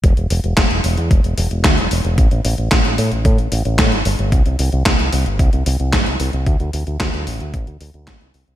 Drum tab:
HH |xxoxxxoxxxoxxxox|xxoxxxoxxxoxxxox|xxoxxxoxxxoxxxox|xxoxxxoxxxoxxxox|
CP |----x-------x---|----x-------x---|----x-------x---|----x-------x---|
SD |----o-------o---|----o-------o---|----o-------o---|----o-------o---|
BD |o---o---o---o---|o---o---o---o---|o---o---o---o---|o---o---o---o---|